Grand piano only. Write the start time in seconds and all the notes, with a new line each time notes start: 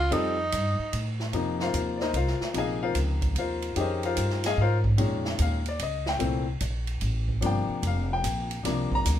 0.11 G3 C4 D#4 F4 A4
1.33 C3 F3 A#3 D#4
1.62 F4 A#4 C5 F5
1.97 D5
2.02 D#4 A#4 C5 D#5
2.16 F4 A#4 C5 F5
2.53 C3 F3 A#3 D#4
2.58 G#4 D#5 F5 G#5
2.83 F4 A#4 C5 F5
3.39 F4 A#4 C5 F5
3.76 D#3 C#4 G4 G#4
3.80 D#4 A#4 C5 D#5
4.05 F4 A#4 C5 F5
4.46 G#4 D#5 F5 G#5
4.61 F4 A#4 C5 F5
4.98 A#2 D#3 G#3 C#4
5.42 F5
5.69 D5
5.83 D#5
6.09 G5
6.18 A#2 E3 A3 C4
7.41 C3 F3 A#3 D4
7.46 G5
7.87 F5
8.13 G5
8.63 C3 F3 A#3 D4
8.95 A#5